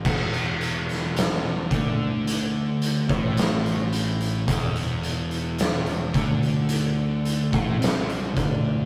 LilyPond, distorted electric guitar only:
\new Staff \with { instrumentName = "Distorted electric guitar" } { \clef bass \time 4/4 \key c \lydian \tempo 4 = 54 e,4. d4~ d16 a,4~ a,16 | e,4. d4~ d16 a,16 c8 d8 | }